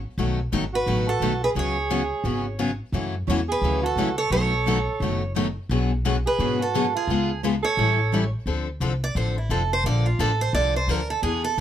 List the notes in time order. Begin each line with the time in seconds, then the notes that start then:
0.18 B1 B2 D#3 F#3 A3 B3 D#4 F#4 A4
0.52 G#1 B2 D#3 F#3 A3 B3 D#4 F#4 A4
0.73 F#4 B4
0.86 A1 B2 D#3 F#3 A3 B3 D#4 F#4 A4
1.08 F#4 A4
1.20 B1 B2 D#3 F#3 A3 B3 D#4 F#4 A4
1.44 G#4 B4
1.55 C#2 C#3 F#3 B3 C#4 F#4 G#4 C#5
1.90 C#3 F#3 B3 C#4 F#4 G#4
2.24 G#1 C#3 F#3 B3 C#4 F#4 G#4
2.59 C#3 F#3 B3 C#4 F#4 G#4
2.92 F#2 C#3 E3 F#3 A3 C#4 E4 F#4 A4
3.27 E2 C#3 E3 F#3 A3 C#4 E4 F#4 A4
3.49 G#4 B4
3.62 D2 C#3 E3 F#3 A3 C#4 E4 F#4 A4
3.83 F#4 A4
3.96 C#2 C#3 E3 F#3 A3 C#4 E4 F#4 A4
4.18 A4 C#5
4.30 B1 B2 D#3 F#3 A3 B3 D#4 F#4 A4 C#5
4.66 B2 D#3 F#3 A3 B3 D#4 F#4 A4
5.00 F#1 B2 D#3 F#3 A3 B3 D#4 F#4 A4
5.35 B2 D#3 F#3 A3 B3 D#4 F#4 A4
5.69 B1 B2 D3 F#3 B3 F#4 G#4
6.05 B2 D3 F#3 B3 F#4 G#4
6.26 G#4 B4
6.39 G#2 B2 D3 F#3 B3 F#4 G#4
6.60 F#4 A4
6.74 B2 D3 F#3 B3 F#4 G#4
6.95 F4 G#4
7.07 C#2 C#3 G#3 B3 F4 G#4
7.44 C#3 G#3 B3 F4 G#4
7.63 A4 C#5
7.77 A1 E3 G3 C#4 E4 A4
8.14 E3 G3 C#4 E4 A4
8.46 D2 D3 F3 C4 D4 A4
8.80 C2 D3 F3 C4 D4 A4
9.04 D5
9.15 A1 D3 F3 C4 D4 A4 C5
9.38 E4
9.49 F1 D3 F3 C4 D4 A4
9.73 C5
9.84 A#1 D3 F3 A#3 D4 A4 D5
10.06 F4
10.19 A1 D3 F3 A#3 D4 A4
10.41 C5
10.53 C2 D3 F3 A#3 D4 A4 D5
10.76 C5
10.87 D2 D3 F3 A#3 D4 A4 A#4
11.10 A4
11.22 E2 E3 B3 D4 G#4
11.44 A4